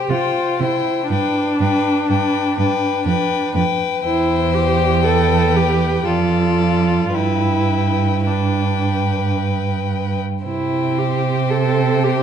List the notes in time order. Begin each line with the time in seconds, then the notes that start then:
Already playing: G4
0.09 C3 F4 C5 G5
0.60 C3 E4 C5 G5
1.10 G2 D4 B4 G5
1.60 G2 B4 G5
2.10 G2 B4 G5
2.57 G2 B4 G5
3.06 F2 B4 G5
3.55 F2 B4 G5
4.04 E2 E4 C5 G5
4.54 G4
5.04 A4 B4
5.56 G4
6.05 F2 F4 A4 D5
7.12 G2 E4 B4 G5
8.26 D4 B4 G5
10.44 C3 E4 C5 G5
10.98 G4
11.50 A4
12.04 G4